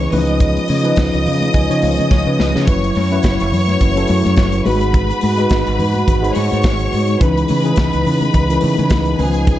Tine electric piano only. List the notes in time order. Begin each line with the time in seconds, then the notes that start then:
Already playing: E3 C#4 D#4 B4
0.11 E3 C#4 D#4 B4
0.18 F3
0.84 F3 C#4 D#4 B4
1.25 F5
1.54 G#5
1.69 F3 C#4 D#4 C#5
1.82 F5
1.99 D#5
2.11 C#5
2.27 B4
2.39 B4
2.67 F#3 C#4 E4 B4
3.11 F#3 C#4 E4 B4
3.96 F#3 C#4 E4 A4
4.65 G#3 D#4 F#4 B4
5.38 G#3 D#4 F#4 B4
6.22 G#3 D#4 F#4 C5
6.30 C#5
7.20 E3 C#4 D#4 B4
7.64 E3 C#4 D#4 G#4
8.49 E3 C#4 D#4 A#4
8.57 B4
9.19 D#3 C#4 D#4 B4
9.25 F3